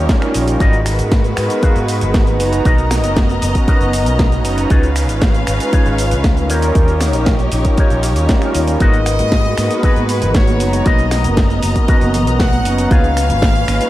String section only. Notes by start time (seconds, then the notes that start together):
Already playing: D#4 G4 C#5
0.61 G#3 F#4 B4
2.65 B3 D#5 A#5
4.70 C#4 B4 F5
6.50 D#4 G4 C#5
8.80 G#3 F#4 B4
10.86 B3 D#5 A#5
12.91 C#4 B4 F5